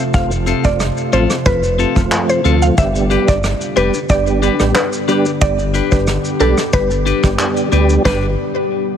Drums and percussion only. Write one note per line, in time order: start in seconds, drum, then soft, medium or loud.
0.14 kick loud
0.14 shaker medium
0.31 shaker medium
0.47 closed hi-hat medium
0.47 shaker medium
0.64 kick loud
0.64 shaker medium
0.80 cross-stick loud
0.80 shaker medium
0.97 shaker medium
1.13 closed hi-hat medium
1.13 shaker soft
1.30 cross-stick medium
1.30 shaker medium
1.46 kick medium
1.46 shaker medium
1.63 shaker medium
1.79 closed hi-hat medium
1.79 shaker medium
1.96 kick medium
1.96 shaker medium
2.12 clap loud
2.12 shaker medium
2.29 shaker medium
2.45 closed hi-hat medium
2.45 shaker medium
2.62 shaker medium
2.78 kick loud
2.78 shaker medium
2.95 shaker medium
3.11 closed hi-hat medium
3.11 shaker medium
3.28 kick loud
3.28 shaker medium
3.44 cross-stick medium
3.44 shaker medium
3.61 shaker medium
3.77 closed hi-hat medium
3.77 shaker soft
3.94 shaker medium
4.09 kick medium
4.09 shaker medium
4.27 shaker soft
4.43 closed hi-hat medium
4.43 shaker medium
4.60 cross-stick medium
4.60 shaker medium
4.75 cross-stick loud
4.75 clap loud
4.75 shaker medium
4.93 shaker medium
5.08 closed hi-hat medium
5.08 shaker medium
5.26 shaker medium
5.41 kick loud
5.41 shaker medium
5.59 shaker medium
5.74 closed hi-hat medium
5.74 shaker medium
5.92 kick loud
5.92 shaker medium
6.07 cross-stick medium
6.07 shaker medium
6.25 shaker medium
6.40 closed hi-hat medium
6.40 shaker soft
6.58 cross-stick medium
6.58 shaker medium
6.73 kick medium
6.73 shaker medium
6.91 shaker medium
7.07 closed hi-hat medium
7.07 shaker medium
7.24 kick medium
7.24 cross-stick medium
7.24 shaker medium
7.39 clap loud
7.39 shaker medium
7.57 shaker medium
7.72 closed hi-hat medium
7.72 shaker medium
7.89 shaker medium
8.05 kick loud
8.05 snare loud